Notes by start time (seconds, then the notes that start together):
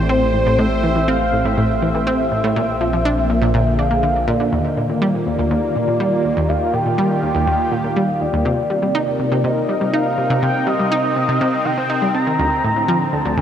Already playing: A1 A2 A3 C4 G4 C5 G5
0.09 C4 C5
0.34 A2
0.46 A2
0.58 A2 E5
0.83 E3
0.96 E3
1.08 C4 F5
1.33 A2
1.44 A2 E5
1.56 A2 E5
1.82 E3
1.95 E3
2.07 C4
2.31 A2
2.44 A2
2.55 A#1 A#2
2.81 F3
2.91 F3 A#3
3.05 D4
3.30 A#2
3.35 D3
3.42 A#2 G#4
3.54 A#2
3.79 D4 F5
3.91 A#3
4.03 D3
4.28 A#2 D5
4.40 D3
4.52 D#2 D#3 D#5
4.66 F4
4.77 A#2
4.85 A#2 G4 D5
5.02 G3
5.25 D#2 D5
5.38 D#2
5.51 D#2
5.76 A#2
5.88 A#2
6.00 G3
6.25 D#2
6.37 D#2
6.48 D#2 F5
6.73 A#2 G5
6.86 A#2
6.98 G3
7.23 D#2
7.35 D#2
7.47 D#2
7.71 A#2 F5
7.84 A#2
7.96 G3
8.20 D#2 D5
8.33 D#2
8.45 C3
8.60 C4 A#4
8.70 G3
8.82 G3
8.91 D#4
9.19 C3
9.32 C3
9.44 C3 D#5
9.69 G3
9.81 G3
9.93 D#4 F5
10.18 C3
10.30 C3
10.42 C3 G5
10.66 G3 D#5
10.79 G3
10.92 D#4
11.16 C3
11.28 C3
11.41 C3
11.65 D#3 G5
11.78 C4
11.90 D#4
12.02 G3
12.14 C4 A#5
12.27 D#3
12.39 D2 D3
12.64 A2
12.76 A2
12.88 F3
13.13 D2 A5
13.18 G4
13.25 D2
13.33 A4
13.37 D2 G5